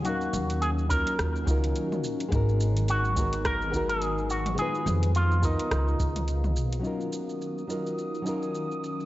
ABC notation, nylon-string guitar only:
X:1
M:4/4
L:1/8
Q:"Swing 16ths" 1/4=106
K:Ebm
V:1 name="Nylon-string guitar"
[G,DEBf]3 [G,DEFB]2 [G,DEFB]3 | [A,CEGB]3 [A,CEGB]2 [A,CEGB]3 | [A,CEFc]3 [A,CEFB]2 z3 | [G,DEFB]3 [G,DEFB]2 [G,DEFB]3 |]